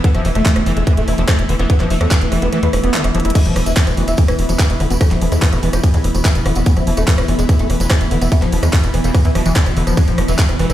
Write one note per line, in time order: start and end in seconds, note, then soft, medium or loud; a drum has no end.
0.00 3.34 E3 medium
0.00 10.73 B3 medium
0.00 10.73 E4 medium
0.00 3.60 E6 medium
0.04 0.08 E3 medium
0.04 3.37 A3 medium
0.04 0.09 B3 loud
0.04 kick loud
0.04 closed hi-hat medium
0.15 0.21 E1 medium
0.15 0.20 E3 medium
0.15 0.24 F3 medium
0.15 cross-stick soft
0.15 closed hi-hat medium
0.25 0.31 E1 loud
0.25 0.30 E3 medium
0.25 0.29 F3 medium
0.25 open hi-hat loud
0.35 0.42 E1 medium
0.35 0.40 A3 medium
0.35 cross-stick soft
0.35 closed hi-hat medium
0.46 0.51 E3 medium
0.46 0.52 E3 medium
0.46 kick loud
0.46 clap loud
0.46 closed hi-hat medium
0.56 0.62 E1 medium
0.56 0.61 E3 medium
0.56 0.63 B3 medium
0.56 cross-stick medium
0.56 closed hi-hat medium
0.66 0.73 F1 loud
0.66 0.71 E3 medium
0.66 0.73 E3 medium
0.66 0.73 B3 medium
0.66 open hi-hat medium
0.77 0.83 E1 medium
0.77 0.82 G#3 medium
0.77 1.06 G#3 loud
0.77 closed hi-hat medium
0.87 0.94 E3 medium
0.87 0.92 E3 medium
0.87 kick loud
0.87 cross-stick soft
0.87 closed hi-hat medium
0.97 1.04 E1 medium
0.97 1.02 A3 loud
0.97 closed hi-hat medium
1.08 1.14 E1 loud
1.08 1.13 E3 medium
1.08 1.14 E3 medium
1.08 cross-stick soft
1.08 open hi-hat loud
1.18 1.25 E1 loud
1.18 1.23 E3 medium
1.18 1.25 E3 medium
1.18 1.22 F3 medium
1.18 closed hi-hat medium
1.28 1.35 E3 medium
1.28 1.33 G#3 medium
1.28 kick loud
1.28 cross-stick medium
1.28 clap loud
1.28 closed hi-hat medium
1.39 1.45 E1 medium
1.39 1.44 E3 medium
1.39 closed hi-hat medium
1.49 1.56 E1 loud
1.49 1.56 D3 medium
1.49 1.54 E3 medium
1.49 open hi-hat medium
1.59 1.66 E1 loud
1.59 1.64 E3 medium
1.59 1.63 B3 medium
1.59 cross-stick soft
1.59 closed hi-hat medium
1.70 1.74 E3 medium
1.70 1.75 B3 medium
1.70 kick loud
1.70 closed hi-hat medium
1.80 1.87 E1 medium
1.80 1.85 E3 medium
1.80 1.90 F3 medium
1.80 cross-stick soft
1.80 clap soft
1.80 closed hi-hat medium
1.90 1.97 E1 loud
1.90 1.95 E3 medium
1.90 1.94 F3 medium
1.90 open hi-hat loud
2.01 2.07 E2 medium
2.01 2.06 A3 medium
2.01 cross-stick medium
2.01 closed hi-hat medium
2.11 2.18 E3 medium
2.11 2.16 E3 medium
2.11 kick loud
2.11 clap loud
2.11 closed hi-hat medium
2.21 2.28 E1 medium
2.21 2.26 E3 medium
2.21 closed hi-hat medium
2.32 2.38 E1 loud
2.32 2.38 E3 medium
2.32 2.37 E3 medium
2.32 cross-stick soft
2.32 open hi-hat medium
2.42 2.49 E1 medium
2.42 2.49 G#3 medium
2.42 2.47 B3 medium
2.42 closed hi-hat medium
2.52 2.59 E3 medium
2.52 2.57 E3 medium
2.52 2.59 G#3 medium
2.52 cross-stick soft
2.52 closed hi-hat medium
2.63 2.69 E2 medium
2.63 2.68 B3 medium
2.63 closed hi-hat medium
2.73 2.80 E1 loud
2.73 2.78 E3 medium
2.73 cross-stick medium
2.73 open hi-hat loud
2.84 2.90 E1 medium
2.84 2.88 E3 medium
2.84 2.95 B3 medium
2.84 closed hi-hat medium
2.94 3.04 D3 medium
2.94 2.99 D4 medium
2.94 clap loud
2.94 closed hi-hat medium
3.04 3.11 E1 medium
3.04 3.09 E3 medium
3.04 cross-stick soft
3.04 closed hi-hat medium
3.15 3.21 E1 loud
3.15 3.20 E3 medium
3.15 3.18 F3 loud
3.15 closed hi-hat medium
3.20 closed hi-hat medium
3.25 3.31 E1 medium
3.25 3.30 E3 medium
3.25 3.31 E4 medium
3.25 cross-stick soft
3.25 closed hi-hat medium
3.30 closed hi-hat medium
3.35 3.39 E3 medium
3.35 10.73 E3 medium
3.35 3.40 G#3 loud
3.35 9.99 B3 medium
3.35 kick loud
3.35 cross-stick soft
3.35 closed hi-hat medium
3.35 crash medium
3.35 ride medium
3.35 tambourine medium
3.45 3.52 E1 medium
3.45 3.51 B2 medium
3.45 3.55 F3 medium
3.45 closed hi-hat medium
3.45 tambourine soft
3.56 3.62 E1 loud
3.56 3.61 B2 medium
3.56 3.60 F3 medium
3.56 10.23 B5 medium
3.56 cross-stick medium
3.56 open hi-hat loud
3.66 3.73 E1 medium
3.66 3.71 E3 medium
3.66 closed hi-hat medium
3.66 tambourine medium
3.76 3.82 B2 medium
3.76 3.83 E3 medium
3.76 kick loud
3.76 clap loud
3.76 closed hi-hat medium
3.76 ride medium
3.76 tambourine medium
3.87 3.94 E1 loud
3.87 3.92 B2 medium
3.87 3.94 B3 medium
3.87 cross-stick soft
3.87 closed hi-hat medium
3.87 tambourine soft
3.97 4.04 F1 loud
3.97 4.02 B2 medium
3.97 4.04 E3 medium
3.97 4.04 B3 medium
3.97 open hi-hat medium
4.08 4.14 E1 medium
4.08 4.13 E3 medium
4.08 cross-stick soft
4.08 closed hi-hat medium
4.08 tambourine medium
4.17 4.23 B2 medium
4.17 4.25 E3 medium
4.17 kick loud
4.17 closed hi-hat medium
4.17 ride medium
4.17 tambourine medium
4.28 4.35 E1 medium
4.28 4.33 E3 medium
4.28 cross-stick medium
4.28 closed hi-hat medium
4.28 tambourine soft
4.39 4.45 E1 loud
4.39 4.44 B2 medium
4.39 open hi-hat loud
4.49 4.56 E1 loud
4.49 4.54 B2 medium
4.49 4.53 F3 medium
4.49 closed hi-hat medium
4.49 tambourine medium
4.59 4.64 E3 medium
4.59 4.66 E3 medium
4.59 kick loud
4.59 cross-stick soft
4.59 clap loud
4.59 closed hi-hat medium
4.59 ride medium
4.70 4.76 E1 medium
4.70 4.75 B2 medium
4.70 closed hi-hat medium
4.70 tambourine soft
4.80 4.87 E1 loud
4.80 4.85 B2 medium
4.80 4.87 D3 medium
4.80 cross-stick soft
4.80 open hi-hat medium
4.90 4.97 E1 medium
4.90 4.95 B2 medium
4.90 4.94 B3 medium
4.90 closed hi-hat medium
4.90 tambourine medium
5.01 5.05 E3 medium
5.01 5.06 A3 loud
5.01 kick loud
5.01 cross-stick medium
5.01 closed hi-hat medium
5.01 ride medium
5.01 tambourine medium
5.11 5.18 E1 medium
5.11 5.16 B2 medium
5.11 5.21 F3 medium
5.11 clap soft
5.11 closed hi-hat medium
5.11 tambourine soft
5.21 5.28 E1 loud
5.21 5.26 B2 medium
5.21 5.25 F3 medium
5.21 open hi-hat loud
5.32 5.38 E2 medium
5.32 5.37 G#3 medium
5.32 5.49 B3 loud
5.32 cross-stick soft
5.32 closed hi-hat medium
5.32 tambourine medium
5.42 5.47 B2 medium
5.42 5.49 E3 medium
5.42 kick loud
5.42 clap loud
5.42 closed hi-hat medium
5.42 ride medium
5.42 tambourine medium
5.52 5.59 E1 loud
5.52 5.57 B2 medium
5.52 5.59 G#3 medium
5.52 cross-stick soft
5.52 closed hi-hat medium
5.52 tambourine soft
5.63 5.69 E1 loud
5.63 5.68 B2 medium
5.63 5.69 E3 medium
5.63 5.69 G#3 medium
5.63 open hi-hat loud
5.73 5.80 E1 medium
5.73 5.78 F3 medium
5.73 cross-stick medium
5.73 closed hi-hat medium
5.73 tambourine medium
5.84 5.88 B2 medium
5.84 5.90 E3 medium
5.84 kick loud
5.84 closed hi-hat medium
5.84 ride medium
5.84 tambourine medium
5.94 6.00 E2 medium
5.94 5.99 G#3 loud
5.94 closed hi-hat medium
5.94 tambourine soft
6.04 6.11 E1 loud
6.04 6.09 B2 medium
6.04 cross-stick soft
6.04 open hi-hat loud
6.15 6.21 E1 medium
6.15 6.20 B2 medium
6.15 6.18 F3 medium
6.15 closed hi-hat medium
6.15 tambourine medium
6.25 6.30 E3 medium
6.25 6.31 E3 medium
6.25 kick loud
6.25 cross-stick soft
6.25 clap loud
6.25 closed hi-hat medium
6.25 ride medium
6.25 tambourine medium
6.35 6.42 E1 medium
6.35 6.40 B2 medium
6.35 closed hi-hat medium
6.35 tambourine soft
6.46 6.52 E1 loud
6.46 6.51 B2 medium
6.46 6.52 D3 medium
6.46 cross-stick medium
6.46 open hi-hat loud
6.55 6.62 E1 loud
6.55 6.61 B2 medium
6.55 6.60 B3 medium
6.55 closed hi-hat medium
6.55 tambourine medium
6.66 6.70 E3 medium
6.66 6.71 B3 loud
6.66 kick loud
6.66 closed hi-hat medium
6.66 ride medium
6.66 tambourine medium
6.76 6.83 E1 medium
6.76 6.82 E3 medium
6.76 6.86 F3 medium
6.76 cross-stick soft
6.76 closed hi-hat soft
6.76 tambourine soft
6.87 6.93 E1 loud
6.87 6.92 E3 medium
6.87 6.91 F3 medium
6.87 open hi-hat loud
6.97 7.04 E1 medium
6.97 7.02 A3 medium
6.97 cross-stick soft
6.97 closed hi-hat medium
6.97 tambourine medium
7.08 7.13 E3 medium
7.08 7.14 E3 medium
7.08 kick loud
7.08 clap loud
7.08 closed hi-hat medium
7.08 ride medium
7.08 tambourine medium
7.18 7.25 E1 medium
7.18 7.23 E3 medium
7.18 7.25 B3 medium
7.18 cross-stick medium
7.18 closed hi-hat medium
7.18 tambourine soft
7.28 7.35 F1 loud
7.28 7.33 E3 medium
7.28 7.35 E3 medium
7.28 7.35 B3 medium
7.28 open hi-hat loud
7.39 7.45 E1 medium
7.39 7.44 G#3 medium
7.39 7.68 G#3 medium
7.39 closed hi-hat medium
7.39 tambourine medium
7.49 7.54 E3 medium
7.49 7.56 E3 medium
7.49 kick loud
7.49 cross-stick soft
7.49 closed hi-hat medium
7.49 ride medium
7.49 tambourine medium
7.59 7.66 E1 medium
7.59 7.64 A3 loud
7.59 closed hi-hat medium
7.59 tambourine soft
7.70 7.76 E1 loud
7.70 7.75 E3 medium
7.70 7.76 E3 medium
7.70 cross-stick soft
7.70 open hi-hat loud
7.80 7.87 E1 medium
7.80 7.85 E3 medium
7.80 7.87 E3 medium
7.80 7.84 F3 medium
7.80 closed hi-hat medium
7.80 tambourine loud
7.90 7.97 E3 medium
7.90 7.95 G#3 medium
7.90 kick loud
7.90 cross-stick medium
7.90 clap loud
7.90 closed hi-hat medium
7.90 ride medium
8.01 8.07 E1 medium
8.01 8.06 E3 medium
8.01 closed hi-hat medium
8.01 tambourine soft
8.11 8.18 E1 loud
8.11 8.18 D3 medium
8.11 8.16 E3 medium
8.11 open hi-hat loud
8.21 8.28 E1 loud
8.21 8.26 E3 medium
8.21 8.25 B3 medium
8.21 cross-stick soft
8.21 closed hi-hat medium
8.21 tambourine medium
8.32 8.36 E3 medium
8.32 8.37 A3 loud
8.32 kick loud
8.32 closed hi-hat medium
8.32 ride medium
8.32 tambourine medium
8.42 8.49 E1 medium
8.42 8.47 B2 medium
8.42 8.52 F3 medium
8.42 cross-stick soft
8.42 clap soft
8.42 closed hi-hat medium
8.42 tambourine soft
8.52 8.59 E1 loud
8.52 8.57 B2 medium
8.52 8.56 F3 medium
8.52 open hi-hat loud
8.63 8.69 E2 loud
8.63 8.68 G#3 medium
8.63 cross-stick medium
8.63 closed hi-hat medium
8.63 tambourine medium
8.73 8.78 B2 medium
8.73 8.80 E3 medium
8.73 kick loud
8.73 clap loud
8.73 closed hi-hat medium
8.73 ride medium
8.73 tambourine medium
8.83 8.90 E1 medium
8.83 8.88 B2 medium
8.83 closed hi-hat medium
8.83 tambourine soft
8.94 9.00 E1 medium
8.94 8.99 B2 medium
8.94 9.00 E3 medium
8.94 cross-stick soft
8.94 open hi-hat loud
9.04 9.11 E1 medium
9.04 9.09 F3 medium
9.04 9.11 G#3 medium
9.04 closed hi-hat medium
9.04 tambourine medium
9.15 9.20 B2 medium
9.15 9.21 E3 medium
9.15 9.21 G#3 medium
9.15 kick loud
9.15 cross-stick soft
9.15 closed hi-hat medium
9.15 ride medium
9.15 tambourine medium
9.25 9.31 E2 medium
9.25 9.30 E3 medium
9.25 closed hi-hat medium
9.25 tambourine soft
9.35 9.42 E1 medium
9.35 9.40 B2 medium
9.35 9.42 F3 medium
9.35 cross-stick medium
9.35 open hi-hat loud
9.46 9.52 E1 medium
9.46 9.51 B2 medium
9.46 9.52 E3 loud
9.46 closed hi-hat medium
9.46 tambourine medium
9.56 9.61 D3 loud
9.56 9.66 D3 medium
9.56 kick loud
9.56 clap loud
9.56 closed hi-hat medium
9.56 ride medium
9.66 9.73 E1 medium
9.66 9.71 B2 medium
9.66 cross-stick soft
9.66 closed hi-hat medium
9.66 tambourine soft
9.77 9.83 E1 loud
9.77 9.82 B2 medium
9.77 9.83 D3 medium
9.77 open hi-hat loud
9.87 9.94 E1 loud
9.87 9.92 B2 medium
9.87 9.97 F3 medium
9.87 cross-stick soft
9.87 closed hi-hat medium
9.87 tambourine medium
9.97 10.01 E3 medium
9.97 10.73 G#3 medium
9.97 10.02 G#3 loud
9.97 kick loud
9.97 cross-stick soft
9.97 closed hi-hat medium
9.97 ride medium
9.97 tambourine medium
10.08 10.14 E1 medium
10.08 10.13 B2 medium
10.08 10.17 F3 medium
10.08 closed hi-hat soft
10.08 tambourine soft
10.18 10.25 E1 loud
10.18 10.23 B2 medium
10.18 10.22 F3 medium
10.18 10.73 E6 medium
10.18 cross-stick medium
10.18 open hi-hat loud
10.28 10.35 E1 medium
10.28 10.33 E3 medium
10.28 closed hi-hat soft
10.28 tambourine medium
10.39 10.44 B2 medium
10.39 10.45 E3 medium
10.39 kick loud
10.39 clap loud
10.39 closed hi-hat medium
10.39 ride medium
10.49 10.56 E1 medium
10.49 10.54 B2 medium
10.49 10.56 B3 loud
10.49 cross-stick soft
10.49 closed hi-hat medium
10.49 tambourine soft
10.59 10.66 F1 loud
10.59 10.64 B2 medium
10.59 10.66 E3 medium
10.59 10.66 B3 medium
10.59 open hi-hat medium
10.70 10.73 E1 loud
10.70 10.73 E3 medium
10.70 cross-stick soft
10.70 closed hi-hat medium
10.70 tambourine medium